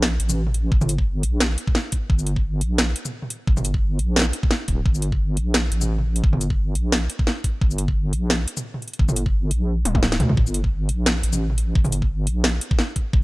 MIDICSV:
0, 0, Header, 1, 3, 480
1, 0, Start_track
1, 0, Key_signature, -2, "minor"
1, 0, Tempo, 344828
1, 998, Time_signature, 4, 2, 24, 8
1, 18423, End_track
2, 0, Start_track
2, 0, Title_t, "Wobble bass"
2, 0, Program_c, 0, 39
2, 0, Note_on_c, 0, 34, 91
2, 261, Note_off_c, 0, 34, 0
2, 277, Note_on_c, 0, 33, 92
2, 984, Note_off_c, 0, 33, 0
2, 997, Note_on_c, 0, 31, 106
2, 1714, Note_on_c, 0, 34, 88
2, 1735, Note_off_c, 0, 31, 0
2, 2182, Note_off_c, 0, 34, 0
2, 2918, Note_on_c, 0, 31, 102
2, 3635, Note_on_c, 0, 34, 86
2, 3656, Note_off_c, 0, 31, 0
2, 4103, Note_off_c, 0, 34, 0
2, 4835, Note_on_c, 0, 31, 101
2, 5550, Note_on_c, 0, 34, 85
2, 5571, Note_off_c, 0, 31, 0
2, 6020, Note_off_c, 0, 34, 0
2, 6518, Note_on_c, 0, 26, 104
2, 6740, Note_off_c, 0, 26, 0
2, 6760, Note_on_c, 0, 31, 99
2, 7477, Note_on_c, 0, 34, 88
2, 7498, Note_off_c, 0, 31, 0
2, 7944, Note_off_c, 0, 34, 0
2, 7957, Note_on_c, 0, 33, 94
2, 8664, Note_off_c, 0, 33, 0
2, 8680, Note_on_c, 0, 31, 102
2, 9394, Note_on_c, 0, 34, 86
2, 9415, Note_off_c, 0, 31, 0
2, 9862, Note_off_c, 0, 34, 0
2, 10599, Note_on_c, 0, 31, 98
2, 11310, Note_on_c, 0, 34, 91
2, 11331, Note_off_c, 0, 31, 0
2, 11780, Note_off_c, 0, 34, 0
2, 12520, Note_on_c, 0, 31, 105
2, 13235, Note_on_c, 0, 34, 88
2, 13256, Note_off_c, 0, 31, 0
2, 13703, Note_off_c, 0, 34, 0
2, 13712, Note_on_c, 0, 26, 97
2, 14191, Note_on_c, 0, 38, 110
2, 14212, Note_off_c, 0, 26, 0
2, 14417, Note_off_c, 0, 38, 0
2, 14439, Note_on_c, 0, 31, 104
2, 15158, Note_on_c, 0, 34, 84
2, 15179, Note_off_c, 0, 31, 0
2, 15624, Note_off_c, 0, 34, 0
2, 15639, Note_on_c, 0, 33, 94
2, 16345, Note_off_c, 0, 33, 0
2, 16362, Note_on_c, 0, 31, 98
2, 17075, Note_on_c, 0, 34, 84
2, 17096, Note_off_c, 0, 31, 0
2, 17543, Note_off_c, 0, 34, 0
2, 18282, Note_on_c, 0, 31, 102
2, 18423, Note_off_c, 0, 31, 0
2, 18423, End_track
3, 0, Start_track
3, 0, Title_t, "Drums"
3, 35, Note_on_c, 9, 38, 111
3, 174, Note_off_c, 9, 38, 0
3, 276, Note_on_c, 9, 42, 81
3, 409, Note_on_c, 9, 45, 36
3, 409, Note_on_c, 9, 82, 67
3, 415, Note_off_c, 9, 42, 0
3, 548, Note_off_c, 9, 45, 0
3, 548, Note_off_c, 9, 82, 0
3, 651, Note_on_c, 9, 45, 37
3, 757, Note_on_c, 9, 42, 68
3, 790, Note_off_c, 9, 45, 0
3, 896, Note_off_c, 9, 42, 0
3, 999, Note_on_c, 9, 36, 127
3, 1133, Note_on_c, 9, 45, 63
3, 1133, Note_on_c, 9, 82, 36
3, 1138, Note_off_c, 9, 36, 0
3, 1239, Note_off_c, 9, 82, 0
3, 1239, Note_on_c, 9, 42, 80
3, 1239, Note_on_c, 9, 82, 35
3, 1272, Note_off_c, 9, 45, 0
3, 1370, Note_on_c, 9, 36, 68
3, 1378, Note_off_c, 9, 42, 0
3, 1378, Note_off_c, 9, 82, 0
3, 1509, Note_off_c, 9, 36, 0
3, 1715, Note_on_c, 9, 42, 70
3, 1855, Note_off_c, 9, 42, 0
3, 1955, Note_on_c, 9, 38, 121
3, 2094, Note_off_c, 9, 38, 0
3, 2197, Note_on_c, 9, 42, 83
3, 2331, Note_on_c, 9, 36, 104
3, 2336, Note_off_c, 9, 42, 0
3, 2435, Note_on_c, 9, 38, 66
3, 2471, Note_off_c, 9, 36, 0
3, 2574, Note_off_c, 9, 38, 0
3, 2674, Note_on_c, 9, 42, 73
3, 2679, Note_on_c, 9, 36, 65
3, 2813, Note_off_c, 9, 42, 0
3, 2819, Note_off_c, 9, 36, 0
3, 2919, Note_on_c, 9, 36, 127
3, 3047, Note_on_c, 9, 82, 35
3, 3058, Note_off_c, 9, 36, 0
3, 3154, Note_on_c, 9, 42, 83
3, 3186, Note_off_c, 9, 82, 0
3, 3290, Note_on_c, 9, 36, 67
3, 3293, Note_off_c, 9, 42, 0
3, 3429, Note_off_c, 9, 36, 0
3, 3636, Note_on_c, 9, 42, 66
3, 3775, Note_off_c, 9, 42, 0
3, 3875, Note_on_c, 9, 38, 117
3, 4015, Note_off_c, 9, 38, 0
3, 4117, Note_on_c, 9, 42, 80
3, 4250, Note_on_c, 9, 45, 35
3, 4250, Note_on_c, 9, 82, 61
3, 4256, Note_off_c, 9, 42, 0
3, 4389, Note_off_c, 9, 45, 0
3, 4389, Note_off_c, 9, 82, 0
3, 4488, Note_on_c, 9, 45, 35
3, 4598, Note_on_c, 9, 42, 68
3, 4628, Note_off_c, 9, 45, 0
3, 4737, Note_off_c, 9, 42, 0
3, 4837, Note_on_c, 9, 36, 127
3, 4969, Note_on_c, 9, 45, 57
3, 4969, Note_on_c, 9, 82, 34
3, 4976, Note_off_c, 9, 36, 0
3, 5076, Note_off_c, 9, 82, 0
3, 5076, Note_on_c, 9, 42, 83
3, 5076, Note_on_c, 9, 82, 37
3, 5108, Note_off_c, 9, 45, 0
3, 5208, Note_on_c, 9, 36, 63
3, 5216, Note_off_c, 9, 42, 0
3, 5216, Note_off_c, 9, 82, 0
3, 5347, Note_off_c, 9, 36, 0
3, 5556, Note_on_c, 9, 42, 63
3, 5695, Note_off_c, 9, 42, 0
3, 5795, Note_on_c, 9, 38, 117
3, 5836, Note_off_c, 9, 38, 0
3, 5836, Note_on_c, 9, 38, 95
3, 5871, Note_off_c, 9, 38, 0
3, 5871, Note_on_c, 9, 38, 78
3, 6011, Note_off_c, 9, 38, 0
3, 6032, Note_on_c, 9, 42, 80
3, 6170, Note_on_c, 9, 36, 111
3, 6171, Note_off_c, 9, 42, 0
3, 6273, Note_on_c, 9, 38, 69
3, 6309, Note_off_c, 9, 36, 0
3, 6412, Note_off_c, 9, 38, 0
3, 6514, Note_on_c, 9, 42, 65
3, 6519, Note_on_c, 9, 36, 68
3, 6654, Note_off_c, 9, 42, 0
3, 6658, Note_off_c, 9, 36, 0
3, 6760, Note_on_c, 9, 36, 120
3, 6884, Note_on_c, 9, 82, 37
3, 6899, Note_off_c, 9, 36, 0
3, 6991, Note_on_c, 9, 42, 75
3, 7024, Note_off_c, 9, 82, 0
3, 7130, Note_off_c, 9, 42, 0
3, 7132, Note_on_c, 9, 36, 60
3, 7271, Note_off_c, 9, 36, 0
3, 7474, Note_on_c, 9, 42, 63
3, 7613, Note_off_c, 9, 42, 0
3, 7714, Note_on_c, 9, 38, 115
3, 7853, Note_off_c, 9, 38, 0
3, 7958, Note_on_c, 9, 42, 76
3, 8092, Note_on_c, 9, 45, 36
3, 8092, Note_on_c, 9, 82, 64
3, 8098, Note_off_c, 9, 42, 0
3, 8231, Note_off_c, 9, 45, 0
3, 8231, Note_off_c, 9, 82, 0
3, 8331, Note_on_c, 9, 45, 35
3, 8470, Note_off_c, 9, 45, 0
3, 8572, Note_on_c, 9, 42, 63
3, 8681, Note_on_c, 9, 36, 118
3, 8711, Note_off_c, 9, 42, 0
3, 8810, Note_on_c, 9, 45, 61
3, 8821, Note_off_c, 9, 36, 0
3, 8923, Note_on_c, 9, 42, 73
3, 8923, Note_on_c, 9, 82, 39
3, 8949, Note_off_c, 9, 45, 0
3, 9052, Note_on_c, 9, 36, 61
3, 9062, Note_off_c, 9, 42, 0
3, 9062, Note_off_c, 9, 82, 0
3, 9192, Note_off_c, 9, 36, 0
3, 9400, Note_on_c, 9, 42, 64
3, 9539, Note_off_c, 9, 42, 0
3, 9638, Note_on_c, 9, 38, 119
3, 9778, Note_off_c, 9, 38, 0
3, 9878, Note_on_c, 9, 42, 79
3, 10012, Note_on_c, 9, 36, 98
3, 10017, Note_off_c, 9, 42, 0
3, 10120, Note_on_c, 9, 38, 62
3, 10151, Note_off_c, 9, 36, 0
3, 10259, Note_off_c, 9, 38, 0
3, 10360, Note_on_c, 9, 36, 60
3, 10360, Note_on_c, 9, 42, 63
3, 10499, Note_off_c, 9, 36, 0
3, 10499, Note_off_c, 9, 42, 0
3, 10600, Note_on_c, 9, 36, 114
3, 10730, Note_on_c, 9, 82, 39
3, 10739, Note_off_c, 9, 36, 0
3, 10835, Note_on_c, 9, 42, 78
3, 10869, Note_off_c, 9, 82, 0
3, 10972, Note_on_c, 9, 36, 60
3, 10974, Note_off_c, 9, 42, 0
3, 11111, Note_off_c, 9, 36, 0
3, 11316, Note_on_c, 9, 42, 66
3, 11455, Note_off_c, 9, 42, 0
3, 11554, Note_on_c, 9, 38, 109
3, 11693, Note_off_c, 9, 38, 0
3, 11799, Note_on_c, 9, 42, 79
3, 11930, Note_on_c, 9, 45, 37
3, 11930, Note_on_c, 9, 82, 69
3, 11938, Note_off_c, 9, 42, 0
3, 12069, Note_off_c, 9, 45, 0
3, 12069, Note_off_c, 9, 82, 0
3, 12170, Note_on_c, 9, 45, 37
3, 12280, Note_on_c, 9, 42, 30
3, 12309, Note_off_c, 9, 45, 0
3, 12355, Note_off_c, 9, 42, 0
3, 12355, Note_on_c, 9, 42, 41
3, 12437, Note_off_c, 9, 42, 0
3, 12437, Note_on_c, 9, 42, 52
3, 12519, Note_on_c, 9, 36, 115
3, 12576, Note_off_c, 9, 42, 0
3, 12649, Note_on_c, 9, 45, 65
3, 12649, Note_on_c, 9, 82, 39
3, 12659, Note_off_c, 9, 36, 0
3, 12756, Note_off_c, 9, 82, 0
3, 12756, Note_on_c, 9, 42, 80
3, 12756, Note_on_c, 9, 82, 38
3, 12788, Note_off_c, 9, 45, 0
3, 12891, Note_on_c, 9, 36, 60
3, 12895, Note_off_c, 9, 42, 0
3, 12895, Note_off_c, 9, 82, 0
3, 13030, Note_off_c, 9, 36, 0
3, 13237, Note_on_c, 9, 42, 72
3, 13376, Note_off_c, 9, 42, 0
3, 13716, Note_on_c, 9, 42, 81
3, 13716, Note_on_c, 9, 48, 60
3, 13847, Note_off_c, 9, 48, 0
3, 13847, Note_on_c, 9, 48, 60
3, 13850, Note_on_c, 9, 36, 104
3, 13855, Note_off_c, 9, 42, 0
3, 13957, Note_on_c, 9, 38, 82
3, 13987, Note_off_c, 9, 48, 0
3, 13990, Note_off_c, 9, 36, 0
3, 14088, Note_off_c, 9, 38, 0
3, 14088, Note_on_c, 9, 38, 70
3, 14088, Note_on_c, 9, 42, 36
3, 14198, Note_off_c, 9, 42, 0
3, 14198, Note_on_c, 9, 42, 65
3, 14198, Note_on_c, 9, 45, 91
3, 14227, Note_off_c, 9, 38, 0
3, 14329, Note_off_c, 9, 45, 0
3, 14329, Note_on_c, 9, 45, 82
3, 14337, Note_off_c, 9, 42, 0
3, 14439, Note_on_c, 9, 36, 116
3, 14468, Note_off_c, 9, 45, 0
3, 14569, Note_on_c, 9, 82, 35
3, 14579, Note_off_c, 9, 36, 0
3, 14676, Note_on_c, 9, 42, 83
3, 14709, Note_off_c, 9, 82, 0
3, 14811, Note_on_c, 9, 36, 64
3, 14815, Note_off_c, 9, 42, 0
3, 14950, Note_off_c, 9, 36, 0
3, 15158, Note_on_c, 9, 42, 67
3, 15297, Note_off_c, 9, 42, 0
3, 15399, Note_on_c, 9, 38, 120
3, 15538, Note_off_c, 9, 38, 0
3, 15638, Note_on_c, 9, 42, 80
3, 15769, Note_on_c, 9, 45, 38
3, 15769, Note_on_c, 9, 82, 67
3, 15777, Note_off_c, 9, 42, 0
3, 15908, Note_off_c, 9, 45, 0
3, 15908, Note_off_c, 9, 82, 0
3, 16007, Note_on_c, 9, 45, 37
3, 16117, Note_on_c, 9, 42, 69
3, 16147, Note_off_c, 9, 45, 0
3, 16256, Note_off_c, 9, 42, 0
3, 16362, Note_on_c, 9, 36, 124
3, 16490, Note_on_c, 9, 45, 62
3, 16490, Note_on_c, 9, 82, 36
3, 16501, Note_off_c, 9, 36, 0
3, 16597, Note_off_c, 9, 82, 0
3, 16597, Note_on_c, 9, 42, 85
3, 16597, Note_on_c, 9, 82, 37
3, 16629, Note_off_c, 9, 45, 0
3, 16733, Note_on_c, 9, 36, 66
3, 16737, Note_off_c, 9, 42, 0
3, 16737, Note_off_c, 9, 82, 0
3, 16872, Note_off_c, 9, 36, 0
3, 17078, Note_on_c, 9, 42, 71
3, 17217, Note_off_c, 9, 42, 0
3, 17316, Note_on_c, 9, 38, 127
3, 17456, Note_off_c, 9, 38, 0
3, 17558, Note_on_c, 9, 42, 83
3, 17693, Note_on_c, 9, 36, 111
3, 17697, Note_off_c, 9, 42, 0
3, 17798, Note_on_c, 9, 38, 65
3, 17832, Note_off_c, 9, 36, 0
3, 17938, Note_off_c, 9, 38, 0
3, 18039, Note_on_c, 9, 42, 68
3, 18042, Note_on_c, 9, 36, 64
3, 18179, Note_off_c, 9, 42, 0
3, 18181, Note_off_c, 9, 36, 0
3, 18282, Note_on_c, 9, 36, 127
3, 18421, Note_off_c, 9, 36, 0
3, 18423, End_track
0, 0, End_of_file